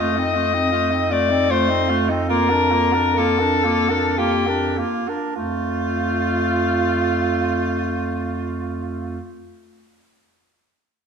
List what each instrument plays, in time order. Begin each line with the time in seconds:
Already playing: alto saxophone F4, soprano saxophone D#5
0.00 bass clarinet F2, clarinet A3
0.16 clarinet C4, alto saxophone D#4
0.34 clarinet A3, alto saxophone F4
0.54 clarinet C4, alto saxophone D#4
0.72 clarinet A3, alto saxophone F4
0.91 clarinet C4, alto saxophone D#4
1.10 clarinet A3, alto saxophone F4, soprano saxophone D5
1.29 clarinet C4, alto saxophone D#4
1.50 clarinet A3, alto saxophone F4, soprano saxophone C5
1.69 clarinet C4, alto saxophone D#4
1.89 clarinet A3, alto saxophone F4
2.09 clarinet C4, alto saxophone D#4
2.28 clarinet A#3, alto saxophone F4, soprano saxophone A#4
2.50 clarinet D4, alto saxophone A#4
2.71 clarinet A#3, alto saxophone F4
2.93 clarinet D4, alto saxophone A#4
3.15 clarinet A#3, alto saxophone F4, soprano saxophone A4
3.39 clarinet D4, alto saxophone A#4
3.64 clarinet A#3, alto saxophone F4
3.90 clarinet D4, alto saxophone A#4
4.18 clarinet A#3, alto saxophone F4, soprano saxophone G4
4.46 clarinet D4, alto saxophone A#4
4.78 clarinet A#3, alto saxophone F4
5.08 clarinet D4, alto saxophone A#4
5.36 bass clarinet F2, clarinet A3, alto saxophone F4, soprano saxophone F4